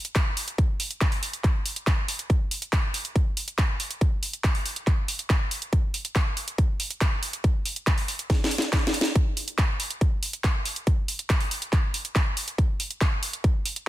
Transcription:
0.05 closed hi-hat medium
0.16 kick loud
0.16 clap loud
0.16 closed hi-hat medium
0.37 open hi-hat loud
0.48 closed hi-hat medium
0.58 kick loud
0.58 closed hi-hat medium
0.80 open hi-hat loud
0.91 closed hi-hat medium
1.01 kick loud
1.01 clap loud
1.01 closed hi-hat medium
1.12 open hi-hat medium
1.23 open hi-hat loud
1.33 closed hi-hat medium
1.44 kick loud
1.44 clap medium
1.44 closed hi-hat medium
1.66 open hi-hat loud
1.76 closed hi-hat medium
1.87 kick loud
1.87 clap loud
1.87 closed hi-hat medium
2.08 open hi-hat loud
2.19 closed hi-hat medium
2.30 kick loud
2.30 closed hi-hat medium
2.51 open hi-hat loud
2.62 closed hi-hat medium
2.73 kick loud
2.73 clap loud
2.73 closed hi-hat medium
2.94 open hi-hat loud
3.05 closed hi-hat medium
3.16 kick loud
3.16 closed hi-hat medium
3.37 open hi-hat loud
3.48 closed hi-hat medium
3.58 kick loud
3.58 clap loud
3.58 closed hi-hat medium
3.80 open hi-hat loud
3.91 closed hi-hat medium
4.01 kick loud
4.01 closed hi-hat medium
4.23 open hi-hat loud
4.33 closed hi-hat medium
4.44 kick loud
4.44 clap loud
4.44 closed hi-hat medium
4.55 open hi-hat medium
4.66 open hi-hat loud
4.76 closed hi-hat medium
4.87 kick loud
4.87 clap medium
4.87 closed hi-hat medium
5.08 open hi-hat loud
5.19 closed hi-hat medium
5.30 kick loud
5.30 clap loud
5.30 closed hi-hat medium
5.51 open hi-hat loud
5.62 closed hi-hat medium
5.73 kick loud
5.73 closed hi-hat medium
5.94 open hi-hat loud
6.05 closed hi-hat medium
6.15 kick loud
6.15 clap loud
6.15 closed hi-hat medium
6.37 open hi-hat loud
6.48 closed hi-hat medium
6.58 kick loud
6.58 closed hi-hat medium
6.80 open hi-hat loud
6.91 closed hi-hat medium
7.01 kick loud
7.01 clap loud
7.01 closed hi-hat medium
7.23 open hi-hat loud
7.33 closed hi-hat medium
7.44 kick loud
7.44 closed hi-hat medium
7.66 open hi-hat loud
7.76 closed hi-hat medium
7.87 kick loud
7.87 clap loud
7.87 closed hi-hat medium
7.98 open hi-hat medium
8.08 open hi-hat loud
8.19 closed hi-hat medium
8.30 kick loud
8.30 snare medium
8.30 closed hi-hat medium
8.44 snare medium
8.51 open hi-hat loud
8.58 snare medium
8.58 closed hi-hat medium
8.73 kick loud
8.73 snare medium
8.73 clap loud
8.73 closed hi-hat medium
8.87 snare loud
8.94 open hi-hat loud
9.01 snare loud
9.01 closed hi-hat medium
9.16 kick loud
9.16 closed hi-hat medium
9.37 open hi-hat loud
9.48 closed hi-hat medium
9.58 kick loud
9.58 clap loud
9.58 closed hi-hat medium
9.80 open hi-hat loud
9.90 closed hi-hat medium
10.01 kick loud
10.01 closed hi-hat medium
10.23 open hi-hat loud
10.33 closed hi-hat medium
10.44 kick loud
10.44 clap loud
10.44 closed hi-hat medium
10.65 open hi-hat loud
10.76 closed hi-hat medium
10.87 kick loud
10.87 closed hi-hat medium
11.08 open hi-hat loud
11.19 closed hi-hat medium
11.30 kick loud
11.30 clap loud
11.30 closed hi-hat medium
11.41 open hi-hat medium
11.51 open hi-hat loud
11.62 closed hi-hat medium
11.73 kick loud
11.73 clap medium
11.73 closed hi-hat medium
11.94 open hi-hat loud
12.05 closed hi-hat medium
12.16 kick loud
12.16 clap loud
12.16 closed hi-hat medium
12.37 open hi-hat loud
12.48 closed hi-hat medium
12.58 kick loud
12.58 closed hi-hat medium
12.80 open hi-hat loud
12.91 closed hi-hat medium
13.01 kick loud
13.01 clap loud
13.01 closed hi-hat medium
13.23 open hi-hat loud
13.33 closed hi-hat medium
13.44 kick loud
13.44 closed hi-hat medium
13.66 open hi-hat loud
13.76 closed hi-hat medium

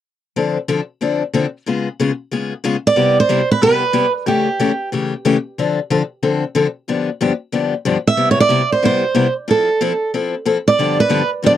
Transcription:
0.36 0.57 D3 medium
0.36 0.57 F3 medium
0.36 0.57 C4 medium
0.36 0.57 D4 medium
0.36 0.57 A4 medium
0.68 0.80 D3 medium
0.68 0.80 F3 medium
0.68 0.80 C4 medium
0.68 0.80 D4 medium
0.68 0.80 A4 medium
1.01 1.22 D3 soft
1.01 1.22 F3 medium
1.01 1.22 C4 medium
1.01 1.22 D4 medium
1.01 1.22 A4 medium
1.34 1.45 D3 medium
1.34 1.45 F3 medium
1.34 1.45 C4 medium
1.34 1.45 D4 medium
1.34 1.45 A4 medium
1.66 1.87 C#3 medium
1.66 1.87 G#3 medium
1.66 1.87 B3 medium
1.66 1.88 F4 medium
1.66 1.88 G#4 medium
2.00 2.10 C#3 medium
2.00 2.11 G#3 medium
2.00 2.11 B3 medium
2.00 2.11 F4 medium
2.00 2.11 G#4 medium
2.31 2.52 C#3 medium
2.31 2.52 G#3 medium
2.31 2.53 B3 medium
2.31 2.53 F4 medium
2.31 2.53 G#4 medium
2.64 2.75 C#3 medium
2.64 2.75 G#3 medium
2.64 2.75 B3 medium
2.64 2.76 F4 medium
2.64 2.76 G#4 medium
2.87 3.19 D5 medium
2.96 3.17 C3 medium
2.96 3.17 G3 medium
2.96 3.17 B3 medium
2.96 3.18 E4 medium
2.96 3.17 G4 medium
3.20 3.49 C5 medium
3.29 3.40 C3 medium
3.29 3.40 G3 medium
3.29 3.40 B3 medium
3.29 3.41 E4 medium
3.29 3.41 G4 medium
3.51 3.62 B4 medium
3.61 3.82 C3 soft
3.61 3.82 G3 medium
3.61 3.82 B3 medium
3.61 3.83 E4 medium
3.61 3.83 G4 medium
3.61 4.11 B4 medium
3.93 4.05 C3 medium
3.93 4.05 G3 medium
3.93 4.05 B3 medium
3.93 4.05 E4 medium
3.93 4.05 G4 medium
4.26 4.47 C#3 medium
4.26 4.47 E3 medium
4.26 4.47 A3 medium
4.26 4.47 C#4 medium
4.26 4.48 G4 medium
4.26 4.89 G4 medium
4.59 4.71 C#3 medium
4.59 4.71 E3 medium
4.59 4.71 A3 medium
4.59 4.71 C#4 medium
4.59 4.71 G4 medium
4.92 5.13 C#3 medium
4.92 5.13 E3 medium
4.92 5.13 A3 medium
4.92 5.13 C#4 medium
4.92 5.13 G4 medium
5.25 5.36 C#3 medium
5.25 5.36 E3 medium
5.25 5.36 A3 medium
5.25 5.36 C#4 medium
5.25 5.36 G4 medium
5.58 5.78 D3 medium
5.58 5.79 F3 medium
5.58 5.79 C4 medium
5.58 5.79 D4 medium
5.58 5.79 A4 medium
5.90 6.01 D3 medium
5.90 6.01 F3 medium
5.90 6.01 C4 medium
5.90 6.02 D4 medium
5.90 6.02 A4 medium
6.23 6.43 D3 medium
6.23 6.43 F3 medium
6.23 6.43 C4 medium
6.23 6.43 D4 medium
6.23 6.43 A4 medium
6.55 6.66 D3 medium
6.55 6.66 F3 medium
6.55 6.66 C4 medium
6.55 6.67 D4 medium
6.55 6.66 A4 medium
6.88 7.08 G2 medium
6.88 7.08 D3 medium
6.88 7.09 F3 medium
6.88 7.09 B3 medium
6.88 7.09 D4 medium
6.88 7.09 G4 medium
7.21 7.31 G2 medium
7.21 7.31 D3 medium
7.21 7.32 F3 medium
7.21 7.32 B3 medium
7.21 7.32 D4 medium
7.21 7.32 G4 medium
7.52 7.73 G2 medium
7.52 7.73 D3 medium
7.52 7.73 F3 medium
7.52 7.73 B3 medium
7.52 7.74 D4 medium
7.52 7.74 G4 medium
7.85 7.96 G2 medium
7.85 7.96 D3 medium
7.85 7.97 F3 medium
7.85 7.96 B3 medium
7.85 7.97 D4 medium
7.85 7.97 G4 medium
8.07 8.31 E5 medium
8.17 8.38 C3 medium
8.17 8.38 G3 medium
8.17 8.38 B3 medium
8.17 8.38 E4 medium
8.17 8.38 G4 medium
8.31 8.38 C#5 medium
8.40 8.69 D5 medium
8.49 8.61 C3 medium
8.49 8.61 G3 medium
8.49 8.61 B3 medium
8.49 8.61 E4 medium
8.49 8.61 G4 medium
8.72 8.84 C5 medium
8.82 9.03 C3 medium
8.82 9.03 G3 medium
8.82 9.03 B3 medium
8.82 9.04 E4 medium
8.82 9.04 G4 medium
8.82 9.33 C5 medium
9.15 9.26 C3 medium
9.15 9.26 G3 medium
9.15 9.26 B3 medium
9.15 9.26 E4 medium
9.15 9.26 G4 medium
9.48 9.68 F3 medium
9.48 9.68 C4 medium
9.48 9.68 E4 medium
9.48 9.69 A4 medium
9.48 10.10 A4 medium
9.81 9.92 F3 medium
9.81 9.92 C4 medium
9.81 9.92 E4 medium
9.81 9.92 A4 medium
10.14 10.34 F3 medium
10.14 10.34 C4 medium
10.14 10.34 E4 medium
10.14 10.34 A4 medium
10.45 10.56 F3 medium
10.45 10.57 C4 medium
10.45 10.57 E4 medium
10.45 10.57 A4 medium
10.68 10.97 D5 medium
10.79 10.99 G2 medium
10.79 10.99 D3 medium
10.79 10.99 F3 medium
10.79 10.99 B3 medium
10.79 10.99 D4 medium
10.79 10.99 G4 medium
11.00 11.29 B4 medium
11.09 11.21 G2 medium
11.09 11.21 D3 medium
11.09 11.21 F3 medium
11.09 11.21 B3 medium
11.09 11.21 D4 medium
11.09 11.22 G4 medium
11.43 11.57 G2 medium
11.43 11.57 D3 medium
11.43 11.57 F3 medium
11.43 11.57 B3 medium
11.43 11.57 D4 medium
11.43 11.57 G4 medium
11.43 11.51 D5 loud

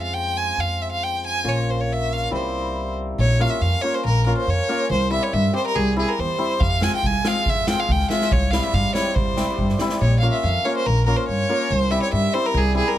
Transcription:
0.00 0.56 F2 medium
0.00 1.50 G#3 medium
0.00 1.50 C4 soft
0.00 1.44 F4 medium
0.00 0.15 F5 medium
0.13 0.38 G5 medium
0.37 0.61 G#5 medium
0.58 1.43 F2 medium
0.58 0.83 F5 medium
0.82 0.91 E5 medium
0.92 1.05 F5 medium
1.03 1.24 G5 medium
1.26 1.50 G#5 medium
1.44 2.30 A#1 medium
1.44 3.39 A#3 medium
1.44 2.37 C#4 soft
1.44 2.37 F4 medium
1.44 1.71 C#5 medium
1.70 1.82 C5 medium
1.80 1.94 C#5 medium
1.92 2.15 E5 medium
2.13 2.33 F5 medium
2.31 3.17 C2 medium
2.31 3.23 G3 medium
2.31 3.46 C4 medium
2.31 3.46 E4 medium
2.31 2.94 C5 medium
3.18 3.44 A#1 loud
3.18 3.42 C#5 medium
3.39 3.50 A#3 medium
3.39 3.50 C#4 medium
3.39 3.50 F4 medium
3.39 3.51 F5 medium
3.50 3.63 E5 medium
3.61 3.74 F2 medium
3.61 3.83 F5 medium
3.81 3.94 A#3 medium
3.81 3.93 C#4 medium
3.81 3.94 F4 medium
3.81 3.96 C#5 medium
3.94 4.04 C5 medium
4.05 4.30 A#1 medium
4.05 4.25 A#4 medium
4.26 4.37 A#3 medium
4.26 4.37 C#4 medium
4.26 4.37 F4 medium
4.26 4.36 A#4 medium
4.37 4.51 C5 medium
4.47 4.60 F2 medium
4.47 4.91 C#5 medium
4.69 4.79 A#3 medium
4.69 4.79 C#4 medium
4.69 4.79 F4 medium
4.90 5.16 C2 loud
4.90 5.11 C5 medium
5.10 5.52 G3 medium
5.10 5.22 C4 medium
5.10 5.22 E4 medium
5.10 5.24 E5 medium
5.23 5.35 C#5 medium
5.33 5.46 G2 loud
5.33 5.54 E5 medium
5.53 5.95 G3 medium
5.53 5.64 C4 medium
5.53 5.64 G4 medium
5.53 5.65 C5 medium
5.67 5.77 A#4 medium
5.75 6.01 C2 loud
5.75 5.97 G#4 medium
5.96 6.37 G3 medium
5.96 6.07 C4 medium
5.96 6.07 E4 medium
5.96 6.10 G#4 medium
6.09 6.21 A#4 medium
6.19 6.32 E2 medium
6.19 6.62 C5 medium
6.38 6.66 G3 medium
6.38 6.50 C4 medium
6.38 6.50 E4 medium
6.60 6.87 F2 loud
6.60 6.85 F5 loud
6.60 kick medium
6.80 7.23 G#3 medium
6.80 6.92 C4 medium
6.80 6.92 F4 medium
6.80 6.93 G#5 medium
6.80 snare medium
6.96 7.07 G5 medium
7.03 7.16 C2 medium
7.03 7.29 G#5 medium
7.03 kick medium
7.24 7.67 G#3 medium
7.24 7.36 C4 medium
7.24 7.36 F4 medium
7.24 7.51 F5 medium
7.24 snare medium
7.46 7.72 F2 medium
7.46 7.69 E5 loud
7.46 kick medium
7.67 8.10 G#3 medium
7.67 7.79 C4 medium
7.67 7.79 F4 medium
7.67 7.81 G5 medium
7.67 snare medium
7.80 7.93 F5 medium
7.89 8.02 C#2 medium
7.89 8.10 G5 loud
7.89 kick medium
8.00 snare soft
8.10 8.37 G#3 medium
8.10 8.22 C4 medium
8.10 8.21 F4 medium
8.10 8.34 E5 loud
8.10 snare medium
8.21 snare medium
8.32 8.57 C2 loud
8.32 8.52 C#5 medium
8.32 kick medium
8.51 8.93 G3 medium
8.51 8.64 C4 medium
8.51 8.64 E4 medium
8.51 8.65 F5 medium
8.51 snare medium
8.63 8.75 E5 medium
8.63 snare soft
8.73 8.87 G2 loud
8.73 8.95 F5 medium
8.73 kick medium
8.94 9.36 G3 medium
8.94 9.06 C4 medium
8.94 9.06 E4 medium
8.94 9.10 C#5 medium
8.94 snare medium
9.10 9.16 C#5 medium
9.15 9.42 C2 medium
9.15 9.80 C5 medium
9.15 kick medium
9.37 9.80 G3 medium
9.37 9.49 C4 medium
9.37 9.49 E4 medium
9.37 snare medium
9.58 9.71 G2 medium
9.58 kick medium
9.69 snare soft
9.79 10.07 G3 medium
9.79 9.91 C4 medium
9.79 9.92 E4 medium
9.79 snare medium
9.90 snare medium
10.01 10.27 A#1 loud
10.01 10.19 C#5 medium
10.20 10.33 A#3 medium
10.20 10.34 C#4 medium
10.20 10.34 F4 medium
10.20 10.30 F5 medium
10.30 10.44 E5 medium
10.30 10.33 F5 medium
10.42 10.56 F2 loud
10.42 10.66 F5 medium
10.65 10.76 A#3 medium
10.65 10.76 C#4 medium
10.65 10.76 F4 medium
10.65 10.76 C#5 medium
10.77 10.87 C5 medium
10.86 11.12 A#1 medium
10.86 11.06 A#4 medium
11.06 11.18 A#3 medium
11.06 11.18 C#4 medium
11.06 11.18 F4 medium
11.06 11.18 A#4 medium
11.16 11.27 C5 medium
11.28 11.41 G2 medium
11.28 11.74 C#5 medium
11.49 11.61 A#3 medium
11.49 11.61 C#4 medium
11.49 11.60 F4 medium
11.70 11.96 C2 loud
11.70 11.92 C5 medium
11.91 12.33 G3 medium
11.91 12.02 C4 medium
11.91 12.02 E4 medium
11.91 12.02 E5 medium
12.02 12.12 C#5 medium
12.13 12.25 G2 loud
12.13 12.35 E5 medium
12.34 12.73 G3 medium
12.34 12.45 C4 medium
12.34 12.45 E4 medium
12.34 12.47 C5 medium
12.46 12.59 A#4 medium
12.54 12.79 C2 loud
12.54 12.76 G#4 medium
12.74 12.98 G3 medium
12.74 12.86 C4 medium
12.74 12.86 E4 medium
12.74 12.89 G#4 medium
12.88 12.98 A#4 medium

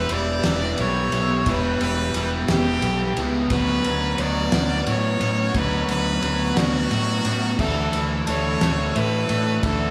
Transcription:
0.00 0.10 G3 medium
0.00 0.10 E4 medium
0.00 0.12 G4 medium
0.00 0.14 B4 medium
0.00 3.47 B4 medium
0.00 3.47 E5 medium
0.00 3.47 G5 medium
0.00 1.44 E6 medium
0.09 0.39 E1 medium
0.09 0.46 E3 medium
0.09 0.79 G3 medium
0.09 0.45 B3 medium
0.09 0.44 E4 medium
0.09 0.42 G4 medium
0.09 0.82 D5 loud
0.09 ride medium
0.44 0.73 E1 medium
0.44 1.45 E3 medium
0.44 1.15 B3 medium
0.44 1.13 E4 medium
0.44 1.11 G4 medium
0.44 snare loud
0.44 ride medium
0.78 1.07 B1 loud
0.78 1.47 G3 medium
0.78 1.51 C#5 loud
0.78 ride medium
1.12 1.41 B1 medium
1.12 1.47 B3 medium
1.12 1.47 E4 medium
1.12 1.48 G4 medium
1.12 ride medium
1.46 1.75 E1 medium
1.46 2.13 E3 medium
1.46 1.81 G3 medium
1.46 1.83 B3 medium
1.46 1.81 E4 medium
1.46 1.79 G4 loud
1.46 1.82 B4 medium
1.46 kick loud
1.46 ride medium
1.80 2.09 E1 medium
1.80 2.15 G3 medium
1.80 2.15 B3 medium
1.80 2.15 E4 medium
1.80 2.16 G4 medium
1.80 2.35 B4 loud
1.80 ride medium
2.14 2.43 E1 medium
2.14 2.50 E3 medium
2.14 2.83 G3 medium
2.14 2.50 B3 medium
2.14 2.48 E4 medium
2.14 2.47 G4 medium
2.14 ride medium
2.48 2.77 E1 medium
2.48 3.50 E3 medium
2.48 3.19 B3 medium
2.48 3.17 E4 medium
2.48 3.16 G4 medium
2.48 3.22 G4 loud
2.48 snare loud
2.48 ride medium
2.82 3.11 B1 medium
2.82 3.51 G3 medium
2.82 ride medium
3.17 3.45 C#2 medium
3.17 3.51 B3 medium
3.17 3.50 E4 medium
3.17 3.49 G4 medium
3.17 ride medium
3.50 3.79 D2 medium
3.50 4.22 D3 medium
3.50 4.17 F#3 medium
3.50 3.86 B3 medium
3.50 3.85 C#4 medium
3.50 3.83 F#4 medium
3.50 7.55 B4 medium
3.50 4.22 B4 medium
3.50 7.56 F#5 medium
3.50 7.56 C#6 medium
3.50 kick loud
3.50 ride medium
3.84 4.13 D2 medium
3.84 4.19 F#3 medium
3.84 4.18 B3 medium
3.84 4.19 C#4 medium
3.84 4.20 F#4 medium
3.84 ride medium
4.17 4.47 D2 medium
4.17 4.53 F#3 medium
4.17 4.52 B3 medium
4.17 4.52 C#4 medium
4.17 4.51 F#4 medium
4.17 4.91 D5 medium
4.17 ride medium
4.52 4.81 D2 loud
4.52 5.53 D3 medium
4.52 5.53 F#3 medium
4.52 5.21 B3 medium
4.52 5.20 C#4 medium
4.52 5.18 F#4 medium
4.52 snare loud
4.52 ride medium
4.87 5.15 A2 loud
4.87 5.54 F#3 medium
4.87 5.59 C#5 loud
4.87 ride medium
5.19 5.49 A2 medium
5.19 5.54 B3 medium
5.19 5.54 C#4 medium
5.19 5.55 F#4 medium
5.19 ride medium
5.54 5.83 D2 medium
5.54 6.27 D3 medium
5.54 6.21 F#3 medium
5.54 5.90 B3 medium
5.54 5.88 C#4 medium
5.54 5.87 F#4 loud
5.54 5.90 B4 medium
5.54 kick loud
5.54 ride medium
5.88 6.17 D2 medium
5.88 6.22 F#3 medium
5.88 6.22 B3 medium
5.88 6.23 C#4 medium
5.88 6.24 F#4 medium
5.88 6.60 B4 loud
5.88 ride medium
6.22 6.51 D2 medium
6.22 6.57 F#3 medium
6.22 6.56 B3 medium
6.22 6.56 C#4 medium
6.22 6.54 F#4 medium
6.22 ride medium
6.56 6.86 D2 medium
6.56 7.58 D3 medium
6.56 7.58 F#3 medium
6.56 7.26 B3 medium
6.56 7.25 C#4 medium
6.56 7.23 F#4 medium
6.56 7.61 F#4 loud
6.56 7.59 D5 medium
6.56 snare loud
6.56 ride medium
6.91 7.19 A2 loud
6.91 7.59 F#3 medium
6.91 ride medium
7.24 7.53 A2 medium
7.24 7.58 B3 medium
7.24 7.58 C#4 medium
7.24 7.57 F#4 medium
7.24 ride medium
7.58 7.87 D2 loud
7.58 8.30 D3 medium
7.58 8.26 E3 medium
7.58 7.94 A3 medium
7.58 7.93 D4 medium
7.58 9.91 A4 medium
7.58 8.01 A4 medium
7.58 7.91 A4 medium
7.58 9.91 E5 medium
7.58 8.01 E5 medium
7.58 9.91 E6 medium
7.58 kick loud
7.58 crash medium
7.92 8.22 D2 medium
7.92 8.26 E3 medium
7.92 8.27 A3 medium
7.92 8.28 D4 medium
7.92 8.29 A4 medium
7.92 ride medium
8.27 8.56 D2 medium
8.27 8.62 E3 medium
8.27 8.62 A3 medium
8.27 8.60 D4 medium
8.27 8.60 A4 medium
8.27 8.99 C#5 medium
8.27 8.91 A5 medium
8.27 ride medium
8.61 8.90 D2 medium
8.61 9.61 D3 medium
8.61 9.63 E3 medium
8.61 9.31 A3 medium
8.61 9.29 D4 medium
8.61 9.28 A4 loud
8.61 snare loud
8.61 ride medium
8.94 9.24 A2 medium
8.94 9.63 E3 medium
8.94 9.64 B4 loud
8.94 9.63 E5 medium
8.94 ride medium
9.28 9.58 A2 medium
9.28 9.63 A3 medium
9.28 9.63 D4 medium
9.28 9.65 A4 medium
9.28 ride medium
9.62 9.91 D2 loud
9.62 9.91 D3 medium
9.62 9.91 E3 medium
9.62 9.91 A3 medium
9.62 9.91 D4 medium
9.62 9.91 A4 medium
9.62 9.91 A4 loud
9.62 9.91 E5 medium
9.62 9.91 C#6 medium
9.62 kick loud
9.62 ride medium

